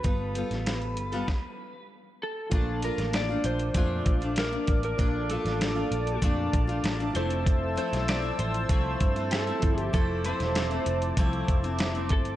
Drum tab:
HH |x-xxxxxx--------|x-xxx-xxx-xxxxxx|x-xxx-xxx-xxxxxx|x-xxx-xxx-xxxxxx|
SD |---oo---o-------|---oo-------o---|---oo-------o---|---oo-------o---|
BD |o-------o-------|o-------o-o---o-|o-------o-o-----|o-------o-o---o-|

HH |x-xxxxxxxxxxxxxx|
SD |---oo-------o---|
BD |o-------o-o---o-|